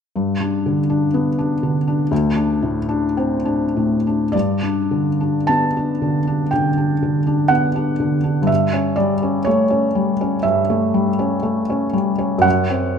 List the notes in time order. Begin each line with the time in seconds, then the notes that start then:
0.16 G2
0.40 D4
0.66 D3
0.90 D4
1.14 B3
1.39 D4
1.63 D3
1.87 D4
2.11 D2
2.35 D4
2.62 A2
2.89 D4
3.17 C4
3.45 D4
3.76 A2
4.07 D4
4.32 G2 D5
4.63 D4
4.91 D3
5.21 D4
5.47 B3 A5
5.77 D4
6.02 D3
6.27 D4
6.51 D3 G5
6.78 D4
7.03 D3
7.27 D4
7.48 B3 F#5
7.76 D4
8.00 D3
8.24 D4
8.42 G2
8.47 E5
8.73 C#4
8.96 G3 D5
9.22 C#4
9.45 A3 C#5
9.70 C#4
9.95 G3
10.21 C#4
10.43 G2 E5
10.70 A3
10.94 G3
11.19 C#4
11.43 A3
11.70 C#4
11.93 G3
12.18 C#4
12.38 F#2 F#5
12.70 C4